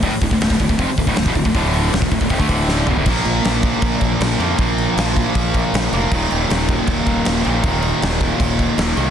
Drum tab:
CC |----------------|----------------|x-x-x-x-x-x-x-x-|x-x-x-x-x-x-x-x-|
HH |o-o-o-o-o-o-o-o-|o-o-o-o-o-o-----|----------------|----------------|
SD |----oo------o---|----oo------o---|----o-------o---|----o-------o---|
FT |----------------|--------------o-|----------------|----------------|
BD |o-oo-oooo-oo-ooo|o----oooooo-----|o-----o-o-o-----|o-----o-o-o-----|

CC |x-x-x-x-x-x-x-x-|x-x-x-x-x-x-x-x-|
HH |----------------|----------------|
SD |----o-------o---|----o-------o---|
FT |----------------|----------------|
BD |o-----o-o-o-----|o-----o-o-o-----|